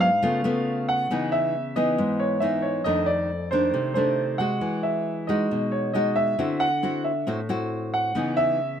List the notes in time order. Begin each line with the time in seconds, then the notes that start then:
Already playing: G#2
0.01 F5
0.22 C#3 A3 B3 F4
0.44 A3 B3 F4
0.89 F#5
1.11 C#3 E3 B3 D#4
1.32 E5
1.76 E3 B3 D#4 D#5
1.98 G#2
2.20 C#5
2.40 E3 B3 D#4 E5
2.62 C#5
2.84 F2 D#3 A3 D4 D#5
3.06 D5
3.51 D#3 A3 D4 C5
3.74 C3
3.94 D#3 A3 D4 C5
4.38 G#3 F#4 F#5
4.61 E3
4.83 E5
5.27 G#3 D#4 F#4 D#5
5.51 B2
5.72 C#5
5.94 G#3 D#4 F#4 D#5
6.16 E5
6.39 D3 C4 E4 F#4
6.60 F#5
6.83 C4 E4 F#4
7.04 E5
7.27 A2 C4 E4 F#4
7.49 C4 E4 F#4
7.94 F#5
8.15 C#3 E3 B3 D#4
8.37 E5